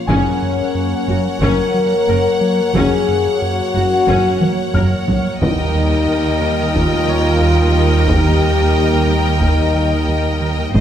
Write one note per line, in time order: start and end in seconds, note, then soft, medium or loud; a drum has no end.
0.00 1.04 C#5 soft
0.00 1.04 C6 soft
0.07 0.16 F#1 medium
0.07 0.16 F#2 medium
0.07 0.28 F#2 medium
0.07 5.42 F#3 medium
0.07 0.29 F#3 medium
0.07 5.37 A#3 medium
0.07 1.37 C#4 medium
0.07 0.39 C#4 medium
0.07 2.04 G#4 soft
0.07 5.41 A#4 medium
0.07 5.37 C#5 medium
0.07 5.41 F#5 medium
0.07 2.04 G#5 medium
0.07 taiko medium
0.42 0.62 F#2 medium
0.75 0.95 F#2 medium
1.08 1.17 F#1 soft
1.08 1.16 F#2 soft
1.08 1.28 F#3 medium
1.08 1.29 C#4 medium
1.08 1.16 F#4 soft
1.42 1.50 F#1 medium
1.42 1.50 F#2 medium
1.42 1.62 F#2 medium
1.42 1.62 F#3 medium
1.42 1.73 C#4 medium
1.42 2.75 A#4 medium
1.42 3.38 C#5 soft
1.42 taiko medium
1.74 1.94 F#3 medium
2.08 2.17 F#1 soft
2.08 2.16 F#2 soft
2.08 2.28 F#2 medium
2.08 2.28 A#3 medium
2.08 2.17 A#4 medium
2.41 2.61 F#3 medium
2.75 2.83 F#1 medium
2.75 2.95 F#2 medium
2.75 2.83 F#2 medium
2.75 2.95 F#3 medium
2.75 3.06 C#4 medium
2.75 3.40 G#4 medium
2.75 taiko medium
3.08 3.28 F#2 medium
3.41 3.62 F#2 medium
3.41 5.08 F#4 loud
3.75 3.83 F#1 soft
3.75 3.83 F#2 soft
3.75 3.95 F#3 medium
3.75 3.95 C#4 medium
3.75 3.83 F#4 medium
4.08 4.16 F#1 medium
4.08 4.28 F#2 medium
4.08 4.16 F#2 medium
4.08 4.28 F#3 medium
4.08 4.39 C#4 medium
4.08 taiko medium
4.41 4.61 F#3 medium
4.41 taiko high medium
4.74 4.83 F#1 medium
4.74 4.94 F#2 medium
4.74 4.83 F#2 medium
4.74 4.95 A#3 medium
4.74 4.83 A#4 soft
4.74 6.71 F6 soft
4.74 taiko low-mid medium
5.08 5.28 F#3 medium
5.08 taiko low medium
5.41 5.61 D#2 medium
5.41 10.71 D#2 medium
5.41 5.62 D#3 medium
5.41 10.75 G3 medium
5.41 10.71 A#3 medium
5.41 6.71 D#4 loud
5.41 10.71 A#4 medium
5.41 10.71 D#5 medium
5.41 10.74 D#5 medium
5.41 10.71 G5 medium
5.41 taiko medium
5.75 5.95 D#2 medium
6.08 6.28 D#2 medium
6.41 6.61 D#3 medium
6.41 6.61 A#3 medium
6.74 6.94 D#2 medium
6.74 6.95 D#3 medium
6.74 8.08 F4 loud
6.74 taiko medium
7.08 7.28 D#3 medium
7.08 9.04 C#5 soft
7.41 7.61 D#2 medium
7.41 7.61 G3 medium
7.75 7.95 D#3 medium
8.08 8.28 D#2 medium
8.08 8.28 D#3 medium
8.08 9.38 G4 medium
8.08 taiko medium
8.41 8.61 D#2 medium
8.74 8.95 D#2 medium
9.08 9.28 D#3 medium
9.08 9.28 A#3 soft
9.41 9.61 D#2 medium
9.41 9.62 D#3 medium
9.41 10.75 D#4 medium
9.41 10.80 G5 soft
9.41 taiko medium
9.74 9.94 D#3 medium
10.08 10.28 D#2 medium
10.08 10.28 G3 soft
10.41 10.61 D#3 medium
10.74 10.80 G#1 medium
10.74 10.80 G#2 medium
10.74 10.80 G#3 medium
10.74 10.80 C4 medium
10.74 10.80 G#4 medium
10.74 10.80 C5 soft
10.74 10.80 D#5 medium
10.74 10.80 D#5 soft
10.74 taiko medium